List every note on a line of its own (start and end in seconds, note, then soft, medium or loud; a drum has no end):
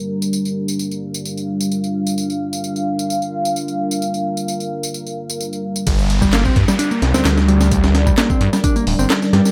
0.00 5.83 G3 medium
0.00 5.83 D4 medium
0.00 5.83 A#4 medium
0.00 5.85 F5 medium
0.22 tambourine medium
0.33 tambourine soft
0.45 tambourine soft
0.68 tambourine medium
0.79 tambourine soft
0.91 tambourine soft
1.14 tambourine medium
1.25 tambourine soft
1.37 tambourine soft
1.61 tambourine medium
1.72 tambourine soft
1.84 tambourine soft
2.07 tambourine medium
2.18 tambourine soft
2.30 tambourine soft
2.53 tambourine medium
2.64 tambourine soft
2.76 tambourine soft
2.99 tambourine medium
3.10 tambourine medium
3.22 tambourine soft
3.45 tambourine medium
3.56 tambourine soft
3.68 tambourine soft
3.91 tambourine medium
4.02 tambourine medium
4.14 tambourine soft
4.37 tambourine medium
4.48 tambourine soft
4.60 tambourine soft
4.83 tambourine medium
4.94 tambourine medium
5.07 tambourine soft
5.30 tambourine medium
5.41 tambourine medium
5.53 tambourine soft
5.76 tambourine medium
5.87 6.50 G1 loud
5.87 9.52 G3 medium
5.87 9.52 D4 medium
5.87 9.52 A#4 medium
5.87 9.52 D5 medium
5.87 kick loud
5.87 closed hi-hat medium
5.87 tambourine medium
5.87 downlifter medium
5.99 tambourine soft
6.10 closed hi-hat medium
6.22 6.32 G3 medium
6.22 kick loud
6.22 tambourine medium
6.33 6.44 A#3 loud
6.33 snare loud
6.33 clap loud
6.33 closed hi-hat medium
6.33 tambourine medium
6.45 6.56 C4 medium
6.45 kick loud
6.45 tambourine soft
6.56 6.64 G2 loud
6.56 kick medium
6.56 closed hi-hat medium
6.68 6.73 G3 medium
6.68 snare medium
6.68 tambourine medium
6.79 6.90 D4 medium
6.79 closed hi-hat medium
6.79 tambourine medium
6.91 7.00 A#3 medium
6.91 tambourine soft
7.02 7.14 C2 medium
7.02 snare soft
7.02 closed hi-hat medium
7.14 7.23 D2 soft
7.14 7.23 C4 medium
7.14 snare medium
7.14 tambourine medium
7.25 8.11 D2 medium
7.25 snare loud
7.25 clap loud
7.25 closed hi-hat medium
7.25 tambourine medium
7.37 snare medium
7.37 tambourine soft
7.48 7.93 G3 medium
7.48 closed hi-hat medium
7.61 snare medium
7.61 tambourine medium
7.71 kick loud
7.71 closed hi-hat medium
7.71 tambourine medium
7.84 snare medium
7.84 tambourine soft
7.95 snare medium
7.95 closed hi-hat medium
8.07 8.17 G3 medium
8.07 kick loud
8.07 tambourine medium
8.18 8.29 A#3 loud
8.18 snare loud
8.18 clap loud
8.18 closed hi-hat medium
8.18 tambourine medium
8.30 8.40 C4 medium
8.30 kick loud
8.30 tambourine soft
8.41 8.48 G2 loud
8.41 closed hi-hat medium
8.53 8.58 G3 medium
8.53 snare medium
8.53 tambourine medium
8.64 8.75 D4 medium
8.64 kick loud
8.64 closed hi-hat medium
8.64 tambourine medium
8.76 8.85 A#3 medium
8.76 closed hi-hat soft
8.76 tambourine soft
8.87 8.95 D1 medium
8.87 open hi-hat medium
8.99 9.06 G1 medium
8.99 9.07 C4 medium
8.99 tambourine medium
9.10 snare loud
9.10 clap loud
9.10 closed hi-hat medium
9.10 tambourine medium
9.22 snare soft
9.22 tambourine soft
9.33 9.41 G2 medium
9.33 9.52 G3 medium
9.33 snare medium
9.33 closed hi-hat medium
9.45 snare soft
9.45 tambourine medium